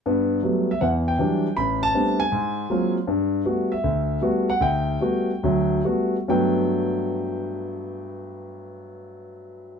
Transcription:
X:1
M:4/4
L:1/8
Q:"Swing" 1/4=152
K:G
V:1 name="Grand piano"
z3 e f g3 | b a2 _a4 z | z3 e3 z f | g6 z2 |
[G,,F,A,B,g]8- | [G,,F,A,B,g]8 |]
V:2 name="Grand piano"
[G,,B,]2 [F,G,A,B,] z [E,,E,]2 [E,F,G,D] z | A,,,2 [G,A,B,CD] z _A,,2 [_G,_A,_B,C=F] z | G,,2 [G,A,B,F] z D,,2 [G,A,B,F] z | D,,2 [G,A,B,F] z [D,,F,]2 [G,A,B,F] z |
z8 | z8 |]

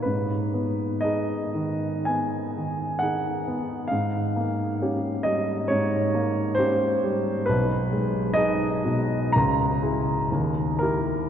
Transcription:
X:1
M:4/4
L:1/8
Q:1/4=66
K:G#m
V:1 name="Grand piano"
B2 d2 g2 f2 | ^e3 d c2 ^B2 | B2 d2 a3 A |]
V:2 name="Grand piano"
G,, B, [DG] D, B, D, [DG] B, | G,, _B, [C=G] =G, ^G,, B, [C=G] G, | B,,, G, [DG] B,, C,, [EG] D,, [E=G] |]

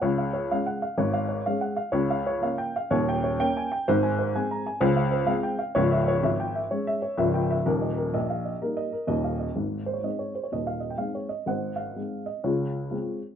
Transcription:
X:1
M:4/4
L:1/16
Q:"Swing" 1/4=126
K:Db
V:1 name="Upright piano"
(3d2 f2 d2 (3f2 g2 f2 (3d2 f2 d2 (3f2 g2 f2 | [K:Ab] (3d2 f2 d2 (3f2 g2 f2 (3d2 g2 d2 (3g2 a2 g2 | (3c2 a2 c2 (3a2 b2 a2 (3c2 f2 c2 (3f2 g2 f2 | (3d2 _f2 d2 (3f2 g2 f2 (3d2 f2 d2 (3f2 g2 f2 |
(3B2 e2 B2 (3e2 f2 e2 (3B2 e2 B2 (3e2 f2 e2 | z2 c d e d c d e f e g f d e2 | [ce_g]2 f4 e2 [FAd]6 z2 |]
V:2 name="Upright piano" clef=bass
[D,,D,]4 [A,D]4 [A,,,A,,]4 [A,D]4 | [K:Ab] [D,,D,]4 [B,D]4 [E,,,E,,]4 [B,D]4 | [A,,,A,,]4 [A,C]4 [D,,D,]4 [A,C]4 | [D,,,D,,]4 A,,,4 [A,D]4 [D,,,D,,]4 |
[E,,,E,,]4 B,,,4 [G,B,E]4 [E,,,E,,]4 | [A,,,A,,]4 [A,CE]4 [E,,,E,,]4 [A,CE]4 | [A,,,A,,]4 [A,CE]4 [D,,D,]4 [A,CF]4 |]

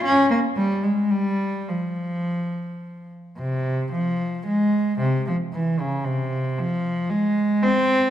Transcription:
X:1
M:3/4
L:1/8
Q:1/4=113
K:Fm
V:1 name="Cello" clef=bass
D B, G, A, G,2 | F,4- F, z | C,2 F,2 A,2 | C, F, =E, D, C,2 |
F,2 A,2 C2 |]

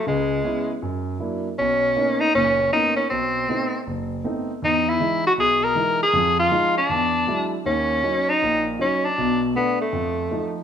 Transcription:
X:1
M:4/4
L:1/8
Q:"Swing" 1/4=158
K:Blyd
V:1 name="Tenor saxophone"
G,4 z4 | C3 D C2 D C | =C4 z4 | D =E2 F G A2 G- |
G =F2 =D4 z | C3 D2 z C =D- | =D z B, =A,4 z |]
V:2 name="Grand piano"
[C,,C,]2 [B,C=E] z F,,2 [F,A,=DE] z | B,,,2 [A,B,CD] z [F,,,A,,]2 [A,B,CD] z | B,,,2 [=A,B,=CD] z F,,,2 [A,B,CD] z | =E,,2 [=E,G,D] z B,,,2 [E,G,D] z |
[=F,,=F,]2 [F,_A,_E] z =E,,2 [^F,G,=D=E] z | [D,,D,]2 [F,CD] z [A,,,A,,]2 [F,CD] z | [B,,,B,,]2 [=A,B,=D] z =F,,2 [=F,A,_E] z |]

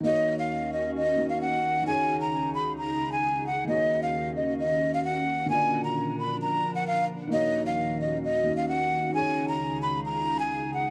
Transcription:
X:1
M:4/4
L:1/16
Q:1/4=132
K:Ebm
V:1 name="Flute"
e3 f3 e2 e3 f g4 | a3 b3 c'2 b3 a3 g2 | e3 f3 e2 e3 f g4 | a3 b3 c'2 b3 g f2 z2 |
e3 f3 e2 e3 f g4 | a3 b3 c'2 b3 a3 g2 |]
V:2 name="Felt piano"
[E,B,Gd]8- [E,B,Gd]2 [E,B,Ge]6 | [E,DAd]16 | [E,B,Gd]16 | [=D,B,F=d]16 |
[E,B,Gd]8- [E,B,Gd]2 [E,B,Ge]6 | [E,DAd]16 |]
V:3 name="Ambient pad"
[E,,E,DG]16 | [D,,D,EA]16 | [E,,E,DG]16 | [B,,F,=DB]16 |
[E,,E,DG]16 | [D,,D,EA]16 |]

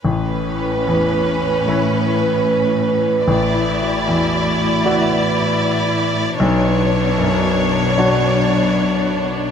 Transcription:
X:1
M:4/4
L:1/8
Q:1/4=75
K:Amix
V:1 name="Violin section"
[CB]8 | [Ed]8 | [Dc]8 |]
V:2 name="Harp"
(3A,, E B (3c B E (3E, E B (3c B E | (3A,, E F (3e F E (3E, E F (3f F E | (3B,, D F (3c F D (3F, D F (3c F D |]
V:3 name="Grand piano"
A,,,2 E,,2 [EBc]4 | A,,,2 E,,2 [EFd]4 | B,,,2 F,,2 [DFc]4 |]
V:4 name="Cello section" clef=bass
A,,8- | A,,8 | B,,8 |]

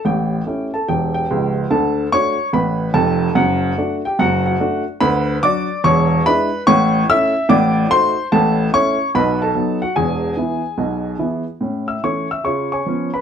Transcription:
X:1
M:4/4
L:1/8
Q:"Swing" 1/4=145
K:D
V:1 name="Upright piano"
[Gg]3 [Aa] [Gg] [Gg]2 z | [Aa]2 [cc']2 [Bb]2 [Aa]2 | [Ff]3 [Gg] [Ff] [Ff]2 z | [K:A] [Bb]2 [dd']2 [cc']2 [Bb]2 |
[cc']2 [ee']2 [dd']2 [=c=c']2 | [Aa]2 [cc']2 [Bb] [Aa]2 [Ff] | [Gg]6- [Gg] z | z [ee'] [cc'] [ee'] [cc'] [cgc']2 [Bb] |]
V:2 name="Upright piano" clef=bass
[A,,,A,,]2 [A,CE]2 [E,,,E,,]2 [C,,,C,,]2 | [D,,D,]2 [A,DF]2 [A,,,A,,]2 [=F,,,=F,,]2 | [F,,,F,,]2 [A,DF]2 [F,,,F,,]2 [A,DF]2 | [K:A] [D,,D,]2 [F,DF]2 [E,,,E,,]2 [G,DE]2 |
[A,,,A,,]2 [A,CE]2 [A,,,A,,]2 [A,_EF]2 | [A,,,A,,]2 [A,CE]2 [B,,,B,,]2 [F,B,^D]2 | [E,,,E,,]2 [E,B,E]2 [B,,,B,,]2 [E,B,E]2 | [A,,C]2 [E,A,C]2 [C,^E]2 [^E,B,C]2 |]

